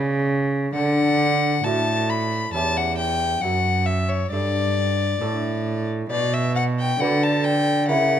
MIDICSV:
0, 0, Header, 1, 4, 480
1, 0, Start_track
1, 0, Key_signature, 2, "major"
1, 0, Tempo, 894188
1, 398, Time_signature, 3, 2, 24, 8
1, 4400, End_track
2, 0, Start_track
2, 0, Title_t, "Violin"
2, 0, Program_c, 0, 40
2, 0, Note_on_c, 0, 74, 114
2, 157, Note_off_c, 0, 74, 0
2, 398, Note_on_c, 0, 78, 93
2, 881, Note_on_c, 0, 81, 93
2, 889, Note_off_c, 0, 78, 0
2, 1125, Note_on_c, 0, 83, 89
2, 1133, Note_off_c, 0, 81, 0
2, 1359, Note_off_c, 0, 83, 0
2, 1362, Note_on_c, 0, 81, 91
2, 1487, Note_on_c, 0, 78, 86
2, 1495, Note_off_c, 0, 81, 0
2, 1595, Note_off_c, 0, 78, 0
2, 1598, Note_on_c, 0, 79, 88
2, 1831, Note_on_c, 0, 78, 82
2, 1839, Note_off_c, 0, 79, 0
2, 2070, Note_on_c, 0, 76, 81
2, 2078, Note_off_c, 0, 78, 0
2, 2194, Note_on_c, 0, 73, 75
2, 2202, Note_off_c, 0, 76, 0
2, 2310, Note_off_c, 0, 73, 0
2, 2314, Note_on_c, 0, 74, 98
2, 3136, Note_off_c, 0, 74, 0
2, 3279, Note_on_c, 0, 74, 89
2, 3402, Note_on_c, 0, 76, 80
2, 3410, Note_off_c, 0, 74, 0
2, 3514, Note_off_c, 0, 76, 0
2, 3518, Note_on_c, 0, 78, 80
2, 3561, Note_off_c, 0, 78, 0
2, 3648, Note_on_c, 0, 79, 78
2, 3756, Note_on_c, 0, 78, 87
2, 3765, Note_off_c, 0, 79, 0
2, 3882, Note_on_c, 0, 81, 81
2, 3890, Note_off_c, 0, 78, 0
2, 3994, Note_on_c, 0, 79, 93
2, 4002, Note_off_c, 0, 81, 0
2, 4229, Note_off_c, 0, 79, 0
2, 4232, Note_on_c, 0, 78, 86
2, 4400, Note_off_c, 0, 78, 0
2, 4400, End_track
3, 0, Start_track
3, 0, Title_t, "Lute"
3, 0, Program_c, 1, 24
3, 0, Note_on_c, 1, 49, 63
3, 0, Note_on_c, 1, 62, 60
3, 0, Note_on_c, 1, 66, 61
3, 0, Note_on_c, 1, 69, 61
3, 364, Note_off_c, 1, 62, 0
3, 369, Note_off_c, 1, 66, 0
3, 373, Note_off_c, 1, 69, 0
3, 380, Note_off_c, 1, 49, 0
3, 405, Note_on_c, 1, 50, 57
3, 862, Note_off_c, 1, 50, 0
3, 882, Note_on_c, 1, 45, 57
3, 885, Note_on_c, 1, 62, 42
3, 886, Note_on_c, 1, 66, 43
3, 890, Note_on_c, 1, 69, 49
3, 1339, Note_off_c, 1, 45, 0
3, 1340, Note_off_c, 1, 62, 0
3, 1341, Note_off_c, 1, 66, 0
3, 1343, Note_off_c, 1, 69, 0
3, 1364, Note_on_c, 1, 40, 55
3, 1366, Note_on_c, 1, 61, 40
3, 1367, Note_on_c, 1, 64, 41
3, 1372, Note_on_c, 1, 67, 41
3, 1818, Note_off_c, 1, 40, 0
3, 1819, Note_off_c, 1, 61, 0
3, 1819, Note_off_c, 1, 64, 0
3, 1822, Note_off_c, 1, 67, 0
3, 1843, Note_on_c, 1, 42, 56
3, 2298, Note_off_c, 1, 42, 0
3, 2322, Note_on_c, 1, 43, 51
3, 2322, Note_on_c, 1, 62, 42
3, 2324, Note_on_c, 1, 69, 48
3, 2778, Note_off_c, 1, 62, 0
3, 2779, Note_off_c, 1, 43, 0
3, 2780, Note_off_c, 1, 69, 0
3, 2797, Note_on_c, 1, 45, 53
3, 2798, Note_on_c, 1, 62, 43
3, 2800, Note_on_c, 1, 69, 48
3, 3252, Note_off_c, 1, 62, 0
3, 3253, Note_off_c, 1, 45, 0
3, 3254, Note_off_c, 1, 69, 0
3, 3272, Note_on_c, 1, 47, 57
3, 3732, Note_off_c, 1, 47, 0
3, 3755, Note_on_c, 1, 50, 52
3, 3760, Note_on_c, 1, 62, 43
3, 3763, Note_on_c, 1, 66, 44
3, 3764, Note_on_c, 1, 71, 49
3, 4213, Note_off_c, 1, 50, 0
3, 4214, Note_off_c, 1, 62, 0
3, 4214, Note_off_c, 1, 66, 0
3, 4216, Note_off_c, 1, 71, 0
3, 4232, Note_on_c, 1, 49, 53
3, 4233, Note_on_c, 1, 58, 43
3, 4235, Note_on_c, 1, 64, 44
3, 4241, Note_on_c, 1, 70, 42
3, 4400, Note_off_c, 1, 49, 0
3, 4400, Note_off_c, 1, 58, 0
3, 4400, Note_off_c, 1, 64, 0
3, 4400, Note_off_c, 1, 70, 0
3, 4400, End_track
4, 0, Start_track
4, 0, Title_t, "Cello"
4, 0, Program_c, 2, 42
4, 0, Note_on_c, 2, 49, 80
4, 391, Note_off_c, 2, 49, 0
4, 400, Note_on_c, 2, 50, 74
4, 860, Note_off_c, 2, 50, 0
4, 882, Note_on_c, 2, 45, 72
4, 1351, Note_off_c, 2, 45, 0
4, 1362, Note_on_c, 2, 40, 67
4, 1829, Note_off_c, 2, 40, 0
4, 1840, Note_on_c, 2, 42, 71
4, 2308, Note_off_c, 2, 42, 0
4, 2319, Note_on_c, 2, 43, 67
4, 2789, Note_off_c, 2, 43, 0
4, 2799, Note_on_c, 2, 45, 70
4, 3265, Note_off_c, 2, 45, 0
4, 3274, Note_on_c, 2, 47, 75
4, 3745, Note_off_c, 2, 47, 0
4, 3758, Note_on_c, 2, 50, 69
4, 4234, Note_on_c, 2, 49, 69
4, 4242, Note_off_c, 2, 50, 0
4, 4400, Note_off_c, 2, 49, 0
4, 4400, End_track
0, 0, End_of_file